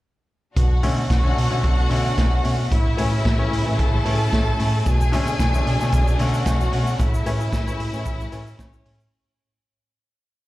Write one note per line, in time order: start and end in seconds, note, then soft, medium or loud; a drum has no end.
0.55 0.85 B1 loud
0.55 2.69 B2 medium
0.55 0.71 B2 medium
0.55 2.69 A3 medium
0.55 2.69 D4 medium
0.55 2.68 F#4 medium
0.55 2.68 F#5 loud
0.55 kick loud
0.55 closed hi-hat medium
0.83 1.04 B2 medium
0.83 0.97 D3 medium
0.83 0.96 A3 medium
0.83 0.96 C#4 medium
0.83 open hi-hat medium
0.97 1.03 A3 soft
0.97 1.03 C#4 soft
1.10 1.31 B1 medium
1.10 kick loud
1.10 snare loud
1.10 closed hi-hat medium
1.23 1.37 D3 medium
1.23 1.37 A3 medium
1.23 1.37 C#4 medium
1.37 1.51 B2 medium
1.37 1.48 B2 loud
1.37 open hi-hat medium
1.51 1.61 B2 medium
1.51 1.64 D3 medium
1.51 1.62 A3 medium
1.51 1.62 C#4 medium
1.63 1.85 B1 loud
1.63 1.70 A3 soft
1.63 1.70 C#4 soft
1.63 kick loud
1.63 closed hi-hat medium
1.77 1.90 B2 medium
1.90 2.11 B2 loud
1.90 2.04 D3 medium
1.90 2.05 A3 medium
1.90 2.05 C#4 medium
1.90 open hi-hat medium
2.17 2.39 B1 loud
2.17 2.32 A3 medium
2.17 2.32 C#4 medium
2.17 kick loud
2.17 snare medium
2.17 closed hi-hat medium
2.32 2.44 B2 soft
2.43 2.65 B2 medium
2.43 2.58 A3 medium
2.43 2.58 C#4 medium
2.43 open hi-hat medium
2.71 2.92 A1 loud
2.71 2.85 A2 medium
2.71 4.84 C#3 medium
2.71 9.08 A3 medium
2.71 4.84 E4 medium
2.71 3.77 E4 medium
2.71 3.77 E5 medium
2.71 kick loud
2.71 closed hi-hat medium
2.97 3.19 A2 medium
2.97 3.12 E3 medium
2.97 3.11 A3 medium
2.97 3.10 C#4 loud
2.97 open hi-hat medium
3.12 3.18 A3 soft
3.12 3.18 C#4 soft
3.25 3.46 A1 medium
3.25 kick loud
3.25 snare loud
3.25 closed hi-hat medium
3.38 3.51 E3 medium
3.38 3.51 A3 medium
3.38 3.52 C#4 medium
3.52 3.66 A2 medium
3.52 3.63 A2 medium
3.52 open hi-hat medium
3.66 3.76 A2 medium
3.66 3.78 E3 medium
3.66 3.77 A3 medium
3.66 3.78 C#4 medium
3.79 3.99 A1 loud
3.79 3.85 A3 soft
3.79 3.85 C#4 soft
3.79 4.84 A4 medium
3.79 4.84 A5 loud
3.79 kick loud
3.79 closed hi-hat medium
3.93 4.05 A2 medium
4.05 4.27 A2 loud
4.05 4.19 E3 medium
4.05 4.19 A3 medium
4.05 4.20 C#4 medium
4.05 open hi-hat medium
4.32 4.53 A1 loud
4.32 4.46 A3 medium
4.32 4.47 C#4 medium
4.32 kick medium
4.32 snare loud
4.32 closed hi-hat medium
4.47 4.59 A2 soft
4.59 4.80 A2 medium
4.59 4.73 A3 medium
4.59 4.73 C#4 medium
4.59 open hi-hat medium
4.86 5.15 B1 loud
4.86 5.00 B2 medium
4.86 6.97 B2 medium
4.86 6.97 D4 medium
4.86 6.17 G#4 medium
4.86 6.17 G#5 loud
4.86 kick loud
4.86 closed hi-hat medium
4.86 shaker medium
5.01 shaker medium
5.12 5.33 B2 medium
5.12 5.26 D3 medium
5.12 5.26 A3 medium
5.12 5.26 C#4 loud
5.12 open hi-hat medium
5.12 shaker soft
5.27 5.33 A3 soft
5.27 5.32 C#4 soft
5.27 shaker medium
5.39 5.60 B1 medium
5.39 kick loud
5.39 snare loud
5.39 closed hi-hat medium
5.39 shaker medium
5.53 5.66 D3 medium
5.53 5.66 A3 medium
5.53 5.66 C#4 medium
5.53 shaker medium
5.66 5.80 B2 medium
5.66 5.77 B2 loud
5.66 open hi-hat medium
5.80 5.90 B2 medium
5.80 5.92 D3 medium
5.80 5.91 A3 medium
5.80 5.91 C#4 medium
5.80 snare soft
5.80 shaker medium
5.92 6.13 B1 loud
5.92 5.99 A3 soft
5.92 5.99 C#4 soft
5.92 kick loud
5.92 closed hi-hat medium
5.92 shaker medium
6.06 6.19 B2 medium
6.06 shaker medium
6.19 6.40 B2 loud
6.19 6.33 D3 medium
6.19 6.33 A3 medium
6.19 6.33 C#4 medium
6.19 6.98 F#4 medium
6.19 6.98 F#5 medium
6.19 open hi-hat medium
6.19 shaker soft
6.34 shaker medium
6.45 6.66 B1 loud
6.45 6.60 A3 medium
6.45 6.60 C#4 medium
6.45 kick loud
6.45 snare medium
6.45 closed hi-hat medium
6.45 shaker medium
6.60 6.72 B2 medium
6.60 shaker medium
6.72 6.93 B2 medium
6.72 6.86 A3 medium
6.72 6.86 C#4 medium
6.72 open hi-hat medium
6.87 shaker medium
6.99 7.20 A1 medium
6.99 7.13 A2 medium
6.99 9.10 C#3 medium
6.99 9.10 E4 medium
6.99 8.56 E4 medium
6.99 8.56 E5 medium
6.99 kick loud
6.99 closed hi-hat medium
6.99 shaker medium
7.14 shaker medium
7.26 7.46 A2 medium
7.26 7.40 E3 medium
7.26 7.39 A3 medium
7.26 7.39 C#4 loud
7.26 open hi-hat medium
7.26 shaker soft
7.40 7.45 A3 soft
7.40 7.45 C#4 soft
7.40 shaker medium
7.53 7.73 A1 medium
7.53 kick loud
7.53 snare loud
7.53 closed hi-hat medium
7.53 shaker medium
7.67 7.79 E3 medium
7.67 7.79 A3 medium
7.67 7.79 C#4 medium
7.67 shaker medium
7.79 7.90 A2 medium
7.79 7.93 A2 medium
7.79 open hi-hat medium
7.93 8.03 A2 medium
7.93 8.06 E3 medium
7.93 8.05 A3 medium
7.93 8.05 C#4 medium
7.93 shaker medium
8.05 8.26 A1 loud
8.05 8.12 A3 soft
8.05 8.12 C#4 soft
8.05 kick loud
8.05 closed hi-hat medium
8.05 shaker medium
8.20 8.32 A2 medium
8.20 shaker medium
8.32 8.53 A2 medium
8.32 8.46 E3 medium
8.32 8.46 A3 medium
8.32 8.46 C#4 medium
8.32 open hi-hat medium
8.32 shaker soft
8.47 shaker medium
8.59 8.79 A1 loud
8.59 8.72 A3 medium
8.59 9.11 C#4 medium
8.59 8.73 C#4 medium
8.59 9.11 C#5 medium
8.59 kick loud
8.59 snare loud
8.59 closed hi-hat medium
8.59 shaker medium
8.73 8.85 A2 soft
8.73 shaker medium
8.85 9.06 A2 medium
8.85 8.99 A3 medium
8.85 8.99 C#4 medium
8.85 open hi-hat medium
9.00 shaker soft